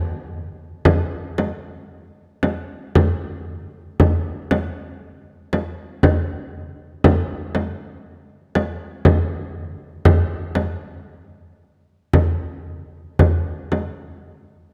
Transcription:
0.85 frame drum
1.38 frame drum
2.43 frame drum
2.95 frame drum
4.00 frame drum
4.51 frame drum
5.53 frame drum
6.03 frame drum
7.04 frame drum
7.55 frame drum
8.55 frame drum
9.05 frame drum
10.05 frame drum
10.55 frame drum
12.13 frame drum
13.19 frame drum
13.72 frame drum

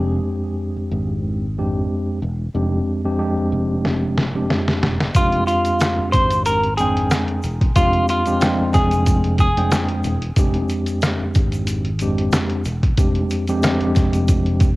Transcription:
Already playing: F1 F2 G#3 C4 D4 G4
0.77 muted fretless electric bass stroke
0.91 G#1
1.58 F2 G#3 C4 D4 G4
2.22 E1
2.54 F1 F2 G#3 C4 D4 G4
3.04 F2 G#3 C4 D4 G4
3.18 F2 G#3 C4 D4 G4
3.37 muted fretless electric bass stroke
3.52 F1
3.85 snare
4.18 snare
4.35 F2 G#3 C4 D4 G4
4.50 snare
4.68 snare
4.83 E1, snare
5.00 snare
5.15 F1 F2 G#3 C4 D4 F4 G4, kick, closed hi-hat, shaker
5.32 closed hi-hat
5.47 F4, closed hi-hat, shaker
5.65 closed hi-hat, shaker
5.80 cross-stick, snare, closed hi-hat, shaker
5.98 muted fretless electric bass stroke
6.12 G#1 C5, kick, closed hi-hat, shaker
6.30 closed hi-hat, shaker
6.46 A#4, closed hi-hat, shaker
6.63 closed hi-hat
6.77 F2 G#3 C4 D4 G#4 G5, closed hi-hat, shaker
6.97 closed hi-hat
7.10 cross-stick, snare, closed hi-hat, shaker
7.28 closed hi-hat
7.43 E1, closed hi-hat, shaker
7.61 kick, closed hi-hat
7.76 F1 F2 G#3 C4 D4 F4 G4, kick, closed hi-hat, shaker
7.93 closed hi-hat
8.08 F4, closed hi-hat, shaker
8.26 F2 G#3 C4 D4 G4, closed hi-hat, shaker
8.40 F2 G#3 C4 D4 G5, cross-stick, snare, closed hi-hat, shaker
8.59 muted fretless electric bass stroke
8.73 F1 G#4, kick, snare, closed hi-hat, shaker
8.91 closed hi-hat, shaker
9.06 kick, closed hi-hat, shaker
9.24 closed hi-hat
9.38 G#4, kick, closed hi-hat, shaker
9.57 F2 G#3 C4 D4 G5, closed hi-hat
9.72 cross-stick, snare, closed hi-hat, shaker
9.89 closed hi-hat
10.04 E1, closed hi-hat, shaker
10.22 closed hi-hat
10.36 F1 F2 G#3 C4 D4 G4, kick, closed hi-hat, shaker
10.54 closed hi-hat
10.69 closed hi-hat, shaker
10.86 closed hi-hat, shaker
11.02 cross-stick, snare, closed hi-hat, shaker
11.20 muted fretless electric bass stroke
11.35 G#1, kick, closed hi-hat, shaker
11.52 closed hi-hat, shaker
11.67 closed hi-hat, shaker
11.85 closed hi-hat
11.99 F2 G#3 C4 D4 G4, closed hi-hat, shaker
12.18 closed hi-hat
12.32 cross-stick, snare, closed hi-hat, shaker
12.50 closed hi-hat
12.65 E1, closed hi-hat, shaker
12.83 kick, closed hi-hat
12.97 F1 F2 G#3 C4 D4 G4, kick, closed hi-hat, shaker
13.15 closed hi-hat
13.30 closed hi-hat, shaker
13.47 F2 G#3 C4 D4 G4, closed hi-hat, shaker
13.62 F2 G#3 C4 D4 G4, cross-stick, snare, closed hi-hat, shaker
13.81 muted fretless electric bass stroke, closed hi-hat
13.95 F1, kick, snare, closed hi-hat, shaker
14.13 closed hi-hat, shaker
14.28 kick, closed hi-hat, shaker
14.46 closed hi-hat
14.60 kick, closed hi-hat, shaker

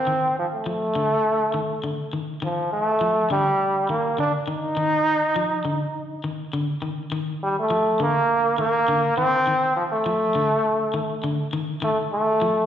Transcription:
Already playing: C4
0.07 D#3
0.39 F3
0.55 A3
0.66 F3
0.95 D3
1.54 D#3
1.84 D3
2.13 D#3
2.42 D#3 F3
2.73 A3
3.01 F3
3.30 D3 G3
3.89 D#3 A#3
4.18 D3 D4
4.48 D#3 D#4
4.77 D#3
5.36 F3
5.65 D3
6.24 D#3
6.53 D3
6.82 D#3
7.12 D#3
7.43 G3
7.59 A3
7.70 F3
8.00 D3 A#3
8.58 D#3 A#3
8.88 D3
9.17 D#3 C4
9.47 D#3
9.76 F3
9.92 A3
10.06 F3
10.35 D3
10.94 D#3
11.24 D3
11.53 D#3
11.82 D#3 A3
12.13 A3
12.42 F3

